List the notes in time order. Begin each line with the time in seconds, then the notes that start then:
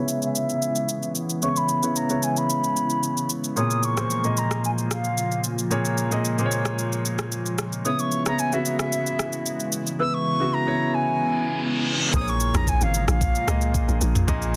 Already playing: C#3 E3 G#3 B3 E4 C#5 E5
0.08 shaker
0.22 E5, shaker
0.35 shaker
0.49 shaker
0.62 shaker
0.75 shaker
0.89 shaker
1.03 shaker
1.15 shaker
1.30 shaker
1.42 C#3 B3 E4 C#5 C#6, shaker
1.56 B5, shaker
1.69 shaker
1.83 C#3 B3 E4 C#5, shaker
1.96 A#5, shaker
2.10 C#3 B3 E4 C#5, shaker
2.23 G#5, shaker
2.37 B5, shaker
2.50 shaker
2.64 shaker
2.77 shaker
2.90 shaker
3.03 shaker
3.17 shaker
3.30 shaker
3.44 shaker
3.56 A#2 F3 A#3 F4 G#4 C#5 D#6, shaker
3.71 shaker
3.83 C#6, shaker
3.97 A#2 A#3 G#4 C5, cross-stick, shaker
4.10 shaker
4.24 A#2 A#3 G#4 D#5, shaker
4.37 A#5, shaker
4.51 cross-stick, shaker
4.64 G#5, shaker
4.78 shaker
4.91 F5, cross-stick, shaker
5.04 shaker
5.18 shaker
5.32 shaker
5.44 shaker
5.58 shaker
5.70 A#2 A#3 G#4 C#5, shaker
5.85 shaker
5.98 shaker
6.11 A#2 A#3 G#4 D#5, shaker
6.25 shaker
6.38 A#2 A#3 G#4 C5, shaker
6.46 C#5
6.51 shaker
6.65 cross-stick, shaker
6.79 shaker
6.92 shaker
7.05 shaker
7.18 cross-stick, shaker
7.32 shaker
7.46 shaker
7.58 cross-stick, shaker
7.73 shaker
7.85 C#3 E3 G#3 B3 E4 C#5 D#6, shaker
7.99 C#6, shaker
8.12 shaker
8.25 C#3 B3 E4 C#5 A#5, cross-stick, shaker
8.39 G#5, shaker
8.52 C#3 B3 E4 F#4 E5, shaker
8.65 shaker
8.79 E5, cross-stick, shaker
8.92 shaker
9.06 shaker
9.19 cross-stick, shaker
9.33 shaker
9.46 shaker
9.60 shaker
9.72 shaker
9.87 shaker
9.99 C#3 B3 E4 B4 E6
10.14 C#6
10.40 C#3 B3 E4 F#4
10.54 A#5
10.66 C#3 B3 E4 C#5
10.94 G#5
11.07 reverse cymbal
12.13 A#1 A#2 C#3 F3 G#3 A#3 F4 G#4 C5 D#6, kick, shaker
12.21 C#5
12.28 C#6, shaker
12.40 shaker
12.54 A#1 A#5, cross-stick, mid tom, shaker
12.67 G#5, kick, shaker
12.81 G#1 F5, shaker
12.94 shaker
13.08 A#1 F5, cross-stick, shaker
13.21 kick, shaker
13.35 shaker
13.47 C#2 A#2 A#3 G#4 D#5, cross-stick, shaker
13.61 shaker
13.74 kick, shaker
13.88 A#1, shaker
14.01 A#1, shaker
14.15 mid tom, shaker
14.28 A#1 A#2 A#3 G#4 D#5, kick, shaker
14.42 shaker